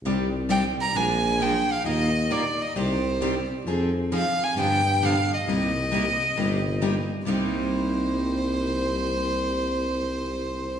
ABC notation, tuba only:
X:1
M:4/4
L:1/8
Q:"Swing" 1/4=134
K:Cm
V:1 name="Tuba" clef=bass
C,,4 B,,,4 | E,,4 C,,4 | F,,3 z G,,4 | C,,4 G,,,4 |
C,,8- | C,,8 |]